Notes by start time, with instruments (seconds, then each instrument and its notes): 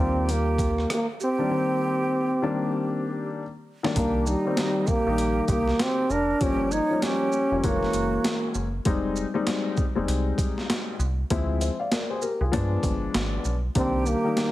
Already playing: fm bass D#2, grand piano D#3 G3 A#3 F4, trombone C4, flute G4
0.29 trombone A#3, flute G4, closed hi-hat
0.59 kick, closed hi-hat, shaker
0.78 cross-stick
0.90 trombone A#3, flute G4, cross-stick, closed hi-hat
1.20 trombone C4, flute G4, shaker
1.38 grand piano D#3 G3 A#3 D4
1.50 grand piano D#3 G3 A#3 C4
2.42 grand piano D#3 G3 A#3 D4
3.83 grand piano D#3 G3 A#3 D4, snare
3.95 fm bass C2, grand piano D#3 G3 A#3 D4, trombone A#3, flute G4, kick, closed hi-hat
4.26 trombone G3, flute D#4, shaker
4.45 grand piano D#3 G3 A#3 C4
4.57 snare, closed hi-hat
4.87 trombone A#3, flute G4, kick, shaker
5.07 fm bass A#1, grand piano D#3 G3 A#3 D#4
5.18 closed hi-hat
5.48 fm bass C2, trombone A#3, flute G4, kick, closed hi-hat, shaker
5.68 snare
5.79 trombone C4, flute G4, snare, closed hi-hat
6.10 fm bass F1, trombone D4, flute A#4, shaker
6.40 fm bass G1, grand piano F3 G3 A#3 C#4, trombone C#4, flute G4, kick, closed hi-hat
6.71 trombone D#4, flute C#5, shaker
6.90 grand piano F3 G3 A#3 C#4
7.02 trombone C#4, flute G4, snare, closed hi-hat
7.32 shaker
7.51 fm bass F1, grand piano F3 G3 A#3 C#4
7.64 fm bass F#1, grand piano E3 G#3 A#3 C#4, trombone A#3, flute F#4, kick, closed hi-hat
7.83 snare
7.93 fm bass F#1, closed hi-hat, shaker
8.24 snare, closed hi-hat
8.54 fm bass F#1, shaker
8.85 fm bass F1, grand piano G3 G#3 C4 D#4, kick, closed hi-hat
9.16 shaker
9.34 grand piano G3 G#3 C4 D#4
9.47 snare, closed hi-hat
9.77 kick, shaker
9.95 fm bass F1, grand piano G3 G#3 C4 D#4
10.08 fm bass C2, closed hi-hat
10.38 kick, closed hi-hat, shaker
10.58 snare
10.70 snare, closed hi-hat
10.99 fm bass C2, shaker
11.30 fm bass D2, grand piano F3 G#3 C4 E4, kick, closed hi-hat
11.61 grand piano C5 E5, closed hi-hat, shaker
11.80 grand piano D5 F5
11.92 grand piano A#4 D5, snare, closed hi-hat
12.10 grand piano G#4 C5
12.22 grand piano G4 A#4, shaker
12.41 fm bass C2, grand piano F4 G#4
12.52 fm bass G2, grand piano F3 G#3 B3 D4, kick, closed hi-hat
12.83 fm bass G1, kick, closed hi-hat, shaker
13.14 fm bass G#1, snare, closed hi-hat
13.45 fm bass B1, shaker
13.75 fm bass C2, grand piano D#3 G3 A#3 D4, trombone C4, flute G4, kick, closed hi-hat
14.06 trombone A#3, flute G4, shaker
14.24 grand piano D#3 G3 A#3 D#4
14.37 snare, closed hi-hat